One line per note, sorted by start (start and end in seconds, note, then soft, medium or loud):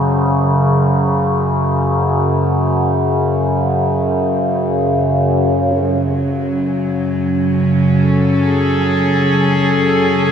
0.00 5.77 F#2 medium
0.00 5.77 C#3 medium
0.00 5.77 C5 medium
5.76 10.32 F#2 medium
5.76 10.32 C#3 medium
5.76 10.32 F#3 medium
5.76 10.32 G#5 medium
7.54 10.32 C#4 medium
7.98 10.32 A4 medium
8.44 10.32 G#4 medium